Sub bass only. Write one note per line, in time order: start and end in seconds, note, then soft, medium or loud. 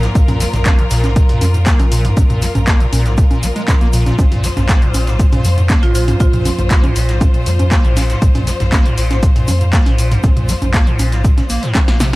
0.15 0.46 A#1 loud
0.54 0.84 A#1 medium
0.91 1.22 A#1 medium
1.42 1.72 F2 medium
1.80 2.10 A#1 loud
2.17 2.48 A#1 loud
2.55 2.85 A#1 medium
2.93 3.23 A#1 medium
3.43 3.51 A#1 medium
3.81 4.12 A#1 loud
4.19 4.49 A#1 loud
4.57 4.87 A#1 medium
4.94 5.25 A#1 medium
5.45 5.75 F2 medium
5.83 6.13 A#1 loud
6.20 6.51 A#1 loud
6.59 6.89 A#1 medium
6.96 7.27 A#1 loud
7.46 7.77 F2 medium
7.85 8.15 A#1 loud
8.22 8.53 A#1 loud
8.60 8.91 A#1 medium
8.98 9.28 A#1 loud
9.48 9.79 F2 medium
9.86 10.17 A#1 loud
10.24 10.54 A#1 loud
10.62 10.92 A#1 medium
10.99 11.30 A#1 loud
11.50 11.58 A#1 medium
11.88 12.16 A#1 loud